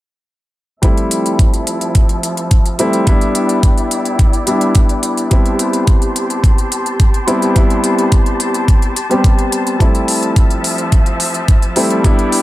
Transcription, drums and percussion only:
0.83 kick, closed hi-hat
0.97 closed hi-hat
1.11 closed hi-hat
1.26 closed hi-hat
1.39 kick, closed hi-hat
1.54 closed hi-hat
1.67 closed hi-hat
1.81 closed hi-hat
1.95 kick, closed hi-hat
2.09 closed hi-hat
2.23 closed hi-hat
2.37 closed hi-hat
2.51 kick, closed hi-hat
2.66 closed hi-hat
2.79 closed hi-hat
2.93 closed hi-hat
3.07 kick, closed hi-hat
3.21 closed hi-hat
3.35 closed hi-hat
3.49 closed hi-hat
3.63 kick, closed hi-hat
3.78 closed hi-hat
3.91 closed hi-hat
4.05 closed hi-hat
4.19 kick, closed hi-hat
4.33 closed hi-hat
4.47 closed hi-hat
4.61 closed hi-hat
4.75 kick, closed hi-hat
4.89 closed hi-hat
5.03 closed hi-hat
5.17 closed hi-hat
5.31 kick, closed hi-hat
5.46 closed hi-hat
5.59 closed hi-hat
5.73 closed hi-hat
5.87 kick, closed hi-hat
6.02 closed hi-hat
6.16 closed hi-hat
6.30 closed hi-hat
6.44 kick, closed hi-hat
6.58 closed hi-hat
6.72 closed hi-hat
6.86 closed hi-hat
7.00 kick, closed hi-hat
7.14 closed hi-hat
7.28 closed hi-hat
7.42 closed hi-hat
7.56 kick, closed hi-hat
7.70 closed hi-hat
7.84 closed hi-hat
7.99 closed hi-hat
8.12 kick, closed hi-hat
8.26 closed hi-hat
8.40 closed hi-hat
8.54 closed hi-hat
8.68 kick, closed hi-hat
8.82 closed hi-hat
8.96 closed hi-hat
9.11 closed hi-hat
9.24 kick, closed hi-hat
9.39 closed hi-hat
9.52 closed hi-hat
9.67 closed hi-hat
9.80 kick, closed hi-hat
9.95 closed hi-hat
10.08 open hi-hat
10.23 closed hi-hat
10.36 kick, closed hi-hat
10.50 closed hi-hat
10.64 open hi-hat
10.78 closed hi-hat
10.92 kick, closed hi-hat
11.06 closed hi-hat
11.20 open hi-hat
11.34 closed hi-hat
11.48 kick, closed hi-hat
11.62 closed hi-hat
11.76 open hi-hat
11.90 closed hi-hat
12.04 kick, closed hi-hat
12.19 closed hi-hat
12.32 open hi-hat

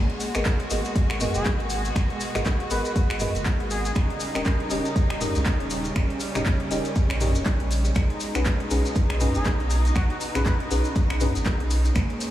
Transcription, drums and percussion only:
0.10 closed hi-hat
0.20 open hi-hat, maracas
0.34 finger snap, closed hi-hat, maracas
0.45 kick, clap, closed hi-hat, maracas
0.60 closed hi-hat
0.70 open hi-hat, maracas
0.85 closed hi-hat, maracas
0.96 kick, closed hi-hat, maracas
1.10 finger snap
1.21 mid tom, open hi-hat, maracas
1.34 closed hi-hat, maracas
1.46 kick, clap, closed hi-hat, maracas
1.60 closed hi-hat
1.70 open hi-hat, maracas
1.85 closed hi-hat, maracas
1.96 finger snap, kick, closed hi-hat, maracas
2.10 closed hi-hat
2.20 open hi-hat, maracas
2.35 finger snap, clap, closed hi-hat, mid tom, maracas
2.45 kick, clap, closed hi-hat, maracas
2.60 closed hi-hat
2.70 open hi-hat, maracas
2.85 closed hi-hat, maracas
2.96 kick, closed hi-hat, maracas
3.10 finger snap, closed hi-hat
3.20 mid tom, open hi-hat, maracas
3.35 closed hi-hat, maracas
3.46 kick, clap, closed hi-hat, maracas
3.60 closed hi-hat
3.71 open hi-hat, maracas
3.85 closed hi-hat, maracas
3.95 finger snap, kick, closed hi-hat, maracas
4.10 closed hi-hat
4.20 open hi-hat, maracas
4.35 finger snap, closed hi-hat, maracas
4.45 kick, clap, closed hi-hat, maracas
4.60 closed hi-hat
4.70 open hi-hat, maracas
4.85 closed hi-hat, maracas
4.96 kick, closed hi-hat, maracas
5.10 finger snap
5.21 mid tom, open hi-hat, maracas
5.35 closed hi-hat, maracas
5.46 kick, clap, closed hi-hat, maracas
5.60 closed hi-hat
5.70 open hi-hat, maracas
5.84 closed hi-hat, maracas
5.96 finger snap, kick, closed hi-hat, maracas
6.10 closed hi-hat
6.20 open hi-hat, maracas
6.35 finger snap, clap, closed hi-hat, mid tom, maracas
6.46 kick, clap, closed hi-hat, maracas
6.60 closed hi-hat
6.71 open hi-hat, maracas
6.85 closed hi-hat, maracas
6.96 kick, closed hi-hat, maracas
7.10 finger snap, closed hi-hat
7.21 mid tom, open hi-hat, maracas
7.35 closed hi-hat, maracas
7.46 kick, clap, closed hi-hat, maracas
7.60 closed hi-hat
7.71 open hi-hat, maracas
7.85 closed hi-hat, maracas
7.95 finger snap, kick, closed hi-hat, maracas
8.10 closed hi-hat
8.20 open hi-hat, maracas
8.35 finger snap, closed hi-hat, maracas
8.45 kick, clap, closed hi-hat, maracas
8.60 closed hi-hat
8.71 open hi-hat, maracas
8.85 closed hi-hat, maracas
8.95 kick, closed hi-hat, maracas
9.10 finger snap
9.20 mid tom, open hi-hat, maracas
9.34 closed hi-hat, maracas
9.45 kick, clap, closed hi-hat, maracas
9.60 closed hi-hat
9.70 open hi-hat, maracas
9.85 closed hi-hat, maracas
9.95 finger snap, kick, closed hi-hat, maracas
10.10 closed hi-hat
10.21 open hi-hat, maracas
10.35 finger snap, clap, closed hi-hat, mid tom, maracas
10.46 kick, clap, closed hi-hat, maracas
10.60 closed hi-hat
10.71 open hi-hat, maracas
10.84 closed hi-hat, maracas
10.96 kick, closed hi-hat, maracas
11.10 finger snap, closed hi-hat
11.20 mid tom, open hi-hat, maracas
11.35 closed hi-hat, maracas
11.46 kick, clap, closed hi-hat, maracas
11.60 closed hi-hat
11.71 open hi-hat, maracas
11.85 closed hi-hat, maracas
11.95 finger snap, kick, closed hi-hat, maracas
12.10 closed hi-hat
12.20 open hi-hat, maracas

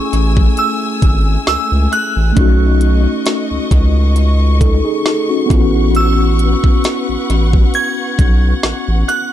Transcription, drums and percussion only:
0.13 closed hi-hat
0.37 kick
0.57 closed hi-hat
1.02 kick, closed hi-hat
1.47 snare
1.93 closed hi-hat
2.37 kick, closed hi-hat
2.81 closed hi-hat
3.26 snare, closed hi-hat
3.71 kick, closed hi-hat
4.16 closed hi-hat
4.61 kick, closed hi-hat
5.06 snare
5.50 kick, closed hi-hat
5.95 closed hi-hat
6.39 closed hi-hat
6.64 kick
6.84 snare, closed hi-hat
7.30 closed hi-hat
7.53 kick
7.74 closed hi-hat
8.19 kick, closed hi-hat
8.63 snare
9.09 closed hi-hat

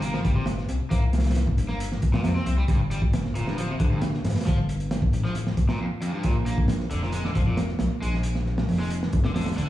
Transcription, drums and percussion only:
0.02 closed hi-hat
0.14 snare
0.25 kick, closed hi-hat
0.46 snare, closed hi-hat
0.58 snare
0.69 closed hi-hat
0.91 kick, closed hi-hat
1.13 snare, closed hi-hat
1.18 snare, closed hi-hat
1.24 snare, closed hi-hat
1.30 snare, closed hi-hat
1.35 snare, closed hi-hat
1.47 kick
1.58 closed hi-hat
1.69 snare
1.80 closed hi-hat
1.92 snare
2.02 kick, closed hi-hat
2.14 snare
2.24 snare, closed hi-hat
2.36 snare
2.46 closed hi-hat
2.68 kick, closed hi-hat
2.91 closed hi-hat
3.02 kick
3.13 snare, closed hi-hat
3.25 snare
3.35 closed hi-hat
3.47 snare
3.58 closed hi-hat
3.80 kick, closed hi-hat
4.01 snare, closed hi-hat
4.14 snare
4.25 snare, closed hi-hat
4.30 snare, closed hi-hat
4.36 snare, closed hi-hat
4.41 snare, closed hi-hat
4.47 kick, closed hi-hat
4.69 closed hi-hat
4.80 closed hi-hat
4.91 snare, closed hi-hat
5.02 kick
5.13 closed hi-hat
5.25 snare
5.35 closed hi-hat
5.47 snare
5.57 kick, closed hi-hat
5.69 snare
6.02 closed hi-hat
6.23 kick, closed hi-hat
6.46 closed hi-hat
6.58 kick
6.68 snare, closed hi-hat
6.80 snare
6.90 closed hi-hat
7.03 snare
7.12 closed hi-hat
7.25 snare
7.35 kick, closed hi-hat
7.57 snare, closed hi-hat
7.69 snare
7.79 snare, closed hi-hat
8.03 closed hi-hat
8.14 snare
8.23 closed hi-hat
8.35 snare
8.46 snare
8.58 snare
8.69 open hi-hat
8.79 snare
8.90 closed hi-hat
9.03 snare
9.13 kick, closed hi-hat
9.24 snare
9.36 snare, closed hi-hat
9.41 snare, closed hi-hat
9.46 snare, closed hi-hat
9.52 snare, closed hi-hat
9.58 closed hi-hat

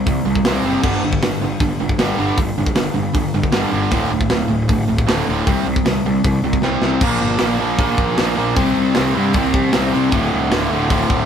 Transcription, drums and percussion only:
0.07 kick, open hi-hat
0.35 kick
0.45 snare, open hi-hat
0.83 kick, crash
1.13 kick
1.22 snare, open hi-hat
1.60 kick, open hi-hat
1.89 kick
1.99 snare, open hi-hat
2.38 kick, open hi-hat
2.66 kick
2.76 snare, open hi-hat
3.15 kick, open hi-hat
3.43 kick
3.52 snare, open hi-hat
3.91 kick, open hi-hat
4.21 kick
4.30 snare, open hi-hat
4.69 kick, open hi-hat
4.98 kick
5.09 snare, open hi-hat
5.47 kick, open hi-hat
5.76 kick
5.86 snare, open hi-hat
6.24 kick, open hi-hat
6.53 kick
6.62 snare
6.82 snare
7.01 kick, crash
7.39 snare, open hi-hat
7.78 kick, open hi-hat
7.98 kick
8.18 snare, open hi-hat
8.56 kick, open hi-hat
8.95 snare, open hi-hat
9.33 kick, open hi-hat
9.54 kick
9.73 snare, open hi-hat
10.12 kick, open hi-hat
10.52 snare, open hi-hat
10.90 kick, open hi-hat
11.10 kick

